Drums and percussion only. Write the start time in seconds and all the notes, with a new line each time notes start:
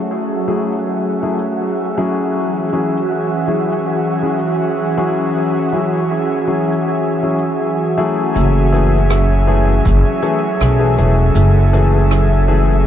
8.36 closed hi-hat
8.73 closed hi-hat
9.10 cross-stick, closed hi-hat
9.85 kick, closed hi-hat
10.22 closed hi-hat
10.61 cross-stick, closed hi-hat
10.98 closed hi-hat
11.35 closed hi-hat
11.74 closed hi-hat
12.11 cross-stick, closed hi-hat